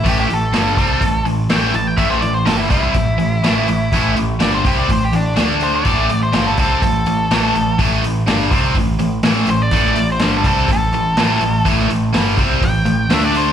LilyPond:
<<
  \new Staff \with { instrumentName = "Lead electric guitar" } { \time 4/4 \key a \minor \tempo 4 = 124 g'16 g'16 a'2 r8 g''8 a''16 g''16 | e''16 c''16 d''16 c''16 a'16 e'16 e'2~ e'8~ | e'8 r8 d''16 c''16 g'16 d''16 c''16 g'16 d'8 r8 c''16 d''16~ | d''8. c''8 a'16 a'8 a'2 |
r2. r8 c''16 d''16~ | d''8. c''8 a'16 a'8 a'2 | r2 g''4 e''16 d''16 c''8 | }
  \new Staff \with { instrumentName = "Overdriven electric guitar" } { \clef bass \time 4/4 \key a \minor <a, e a>8 <a, e>8 <g, d g>8 <c g c'>8 <a, e>8 <a, e>8 <a, e a>8 <a, e>8 | <a, e a>8 <a, e>8 <g, d g>8 <c g c'>8 <a, e>8 <a, e>8 <a, e a>8 <a, e>8 | <a, e a>8 <a, e>8 <g, d g>8 <c g c'>8 <a, e>8 <a, e>8 <d a d'>4 | <a, e a>8 <a, e>8 <g, d g>8 <c g c'>8 <a, e>8 <a, e>8 <a, e a>8 <a, e>8 |
<a, e a>8 <a, e>8 <g, d g>8 <c g c'>8 <a, e>8 <a, e>8 <a, e a>8 <a, e>8 | <a, e a>8 <a, e>8 <g, d g>8 <c g c'>8 <a, e>8 <a, e>8 <a, e a>8 <a, e>8 | <a, e a>8 <a, e>8 <g, d g>8 <c g c'>8 <a, e>8 <a, e>8 <d a d'>4 | }
  \new Staff \with { instrumentName = "Picked electric bass" } { \clef bass \time 4/4 \key a \minor a,,8 a,,8 g,,8 c,8 a,,8 a,,8 a,,8 a,,8 | a,,8 a,,8 g,,8 c,8 a,,8 a,,8 a,,8 a,,8 | a,,8 a,,8 g,,8 c,8 a,,8 a,,8 d,4 | a,,8 a,,8 g,,8 c,8 a,,8 a,,8 a,,8 a,,8 |
a,,8 a,,8 g,,8 c,8 a,,8 a,,8 a,,8 a,,8 | a,,8 a,,8 g,,8 c,8 a,,8 a,,8 a,,8 a,,8 | a,,8 a,,8 g,,8 c,8 a,,8 a,,8 d,4 | }
  \new DrumStaff \with { instrumentName = "Drums" } \drummode { \time 4/4 <hho bd>8 hho8 <hho sn>8 <hho bd>8 <hho bd>8 hho8 <hho sn>16 sn16 hho8 | <hho bd>16 sn16 hho8 <hho sn>8 <hho bd>8 <hho bd>8 hho8 <hho sn>8 hho8 | <hho bd>8 hho8 <hho sn>8 <hho bd>8 <hho bd>8 hho8 <hho sn>16 sn16 hho8 | <hho bd>8 hho8 <hho sn>8 <hho bd>8 <hho bd>8 hho8 <hho sn>16 sn16 hho8 |
<hho bd>8 hho8 <hho sn>8 <hho bd>8 <hho bd>8 hho8 <hho sn>16 sn16 hho8 | <hho bd>16 sn16 hho8 <hho sn>8 <hho bd>8 <hho bd>8 hho8 <hho sn>8 hho8 | <hho bd>16 sn16 hho8 <hho sn>8 <hho bd>8 <hho bd>8 hho8 <hho sn>8 hho8 | }
>>